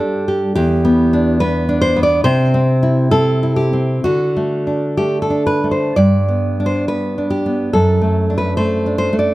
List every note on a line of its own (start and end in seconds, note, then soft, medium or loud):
0.00 0.52 G2 medium
0.00 0.42 G3 medium
0.00 0.56 D4 medium
0.00 0.27 G4 medium
0.00 0.52 A4 loud
0.28 0.54 G4 medium
0.55 2.21 E2 medium
0.55 1.37 G4 loud
0.85 1.40 B3 medium
1.13 1.67 D4 medium
1.40 1.95 B3 medium
1.40 1.80 B4 loud
1.69 2.25 D4 medium
1.81 2.03 C5 loud
1.96 2.25 B3 medium
2.03 2.24 D5 medium
2.24 3.99 C3 loud
2.24 3.08 C5 loud
2.54 3.11 C4 medium
2.83 3.42 E4 medium
3.11 3.72 C4 medium
3.11 3.55 A4 loud
3.43 4.04 E4 medium
3.56 4.01 G4 medium
3.73 4.03 C4 medium
4.04 5.92 D3 medium
4.04 4.94 F#4 medium
4.37 4.97 A3 medium
4.67 5.29 D4 soft
4.97 5.63 A3 soft
4.97 5.21 G4 medium
5.22 5.46 A4 medium
5.30 5.95 D4 soft
5.47 5.71 B4 medium
5.64 5.95 A3 soft
5.71 5.95 C5 medium
5.96 7.70 G2 medium
5.96 6.62 D5 loud
6.28 6.88 B3 medium
6.60 7.17 D4 medium
6.66 6.87 C5 medium
6.88 7.45 B3 medium
6.88 7.29 B4 medium
7.18 7.74 D4 medium
7.30 7.71 G4 medium
7.46 7.74 B3 medium
7.73 9.34 F#2 medium
7.73 8.33 A4 medium
8.02 8.56 A3 medium
8.30 8.85 D4 medium
8.38 8.57 B4 medium
8.57 9.12 A3 medium
8.57 8.96 C5 medium
8.86 9.34 D4 medium
8.98 9.18 C5 medium
9.13 9.34 A3 medium
9.19 9.34 D5 medium